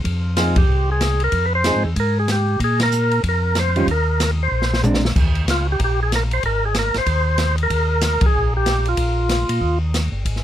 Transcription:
0.04 F2, kick, ride
0.37 F3 C4 D#4 F4 G#4, snare, hi-hat pedal, ride
0.56 G4, kick, ride
0.68 C2
0.92 G#4
1.01 snare, hi-hat pedal, ride
1.20 ride
1.24 A#4
1.32 F2, kick, ride
1.45 B4
1.55 C5
1.64 F3 C4 D#4 G#4, snare, hi-hat pedal, ride
1.76 G#2
1.84 E2
1.96 G#2 A#4, kick, ride
2.19 G#4
2.28 G4, snare, hi-hat pedal, ride
2.60 A#2, kick, ride
2.64 G#4
2.80 A#4, snare, ride
2.92 hi-hat pedal
3.11 ride
3.24 F2, kick, ride
3.29 A#4
3.55 snare, hi-hat pedal, ride
3.59 C5
3.76 D#3 G3 C#4 F4, ride
3.87 D#2 A#4, kick, ride
4.20 A#4, snare, hi-hat pedal, ride
4.43 C5
4.52 A#1
4.62 snare
4.74 snare
4.83 G#3 C4 D4, hi-hat pedal, mid tom
4.94 snare
5.05 snare
5.16 D#2, kick, crash
5.35 ride
5.46 C#2, snare, hi-hat pedal, ride
5.50 F4
5.72 G4
5.79 A#1, kick, ride
5.84 G4
6.03 G#4
6.12 A#4, snare, hi-hat pedal, ride
6.31 C5, ride
6.43 G#1 A#4, kick, ride
6.65 G#4
6.75 snare, hi-hat pedal, ride
6.79 A#4
6.94 G#1 C5, snare, ride
7.06 D#2, kick, ride
7.38 snare, hi-hat pedal, ride
7.58 ride
7.63 A#4
7.70 D#2, kick, ride
8.01 snare, hi-hat pedal, ride
8.21 D#2, kick, ride
8.26 G#4
8.35 A#1
8.57 G4
8.66 snare, hi-hat pedal, ride
8.85 F4, ride
8.97 A#1, kick, ride
9.29 snare, hi-hat pedal, ride
9.49 A#2, ride
9.61 D#2, kick
9.94 snare, hi-hat pedal, ride
10.12 G1
10.25 G#1, kick, ride
10.36 snare

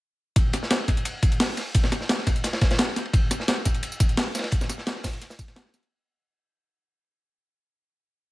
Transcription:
0.36 kick, closed hi-hat, ride
0.53 snare, closed hi-hat, ride
0.63 snare
0.70 snare, closed hi-hat, ride
0.88 kick, snare, closed hi-hat, ride
0.97 closed hi-hat
1.05 closed hi-hat, ride
1.22 kick, closed hi-hat, ride
1.32 closed hi-hat
1.40 snare, closed hi-hat, open hi-hat
1.57 snare, closed hi-hat, ride
1.75 kick, closed hi-hat, ride
1.83 snare
1.92 snare, closed hi-hat, ride
2.01 snare
2.09 snare, closed hi-hat, ride
2.18 snare
2.27 kick, snare, closed hi-hat, ride
2.36 closed hi-hat
2.44 snare, closed hi-hat, ride
2.53 snare, ride
2.61 kick, snare, closed hi-hat, ride
2.71 snare, closed hi-hat, ride
2.78 snare, closed hi-hat, ride
2.88 snare
2.96 snare, closed hi-hat, ride
3.05 ride
3.13 kick, closed hi-hat, ride
3.31 snare, closed hi-hat, ride, tambourine
3.40 snare
3.48 snare, closed hi-hat, ride
3.65 kick, snare, closed hi-hat, ride, tambourine
3.75 closed hi-hat
3.83 closed hi-hat, ride
3.92 tambourine
4.00 kick, closed hi-hat, ride, tambourine
4.09 closed hi-hat
4.17 snare, closed hi-hat, open hi-hat
4.35 snare, closed hi-hat, ride, tambourine
4.39 snare, ride
4.43 snare, ride
4.51 kick, closed hi-hat, ride
4.61 snare, tambourine
4.69 snare, closed hi-hat, ride, tambourine
4.78 snare
4.87 snare, closed hi-hat, ride
4.96 snare
5.03 kick, snare, open hi-hat, tambourine
5.13 closed hi-hat
5.21 snare, closed hi-hat, ride
5.30 snare, open hi-hat, tambourine
5.39 kick, closed hi-hat, tambourine
5.48 snare, closed hi-hat, ride
5.56 snare, closed hi-hat, ride
5.65 snare
5.74 snare, closed hi-hat, ride, tambourine
5.83 closed hi-hat, ride

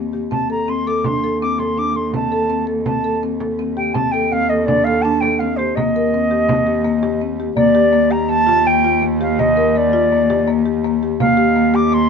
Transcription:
Already playing: D#2
0.13 G4, frame drum
0.31 D#2 C4 A5, frame drum
0.50 A4 A#5
0.68 C4 C6, frame drum
0.87 A4 D6
1.04 D4 C6, frame drum
1.24 A4
1.41 C4 D6
1.58 A4 C6, frame drum
1.78 D4 D6
1.95 A4 C6, frame drum
2.14 C4 A5, frame drum
2.32 A4
2.49 C4, frame drum
2.67 A4
2.86 C4 A5, frame drum
3.04 A4
3.23 C4
3.40 A4, frame drum
3.59 C4
3.77 G4 G5, frame drum
3.94 D#2 C4 A5, frame drum
4.11 A4 G5
4.31 C4 F5, frame drum
4.49 A4 D#5
4.65 D4 D5, frame drum
4.84 A4 F5
5.02 D4 A5
5.20 A4 G5, frame drum
5.39 C4 F5
5.56 G4 C5, frame drum
5.75 D#2 A#3 D#5, frame drum
5.96 A#4
6.13 C4, frame drum
6.31 G4
6.49 C4, frame drum
6.67 G4, frame drum
6.84 A#3, frame drum
7.03 G4, frame drum
7.21 C4
7.40 G4
7.56 D#2 A#3 D5, frame drum
7.75 G4
7.93 A#3
8.11 G4 A#5
8.29 A#3 A5
8.47 F4, frame drum
8.65 A#3 G5
8.84 F4
9.02 A#3
9.21 G4 F5
9.39 A#3 D#5, frame drum
9.57 A#4
9.76 A#3 D5
9.93 F4
10.12 A#3
10.30 G4, frame drum
10.47 A#3
10.66 G4
10.84 A#3
11.03 G4
11.20 D#2 A#3 F5, frame drum
11.37 G4
11.56 A#3
11.74 G4 D6
11.92 A#3 C6

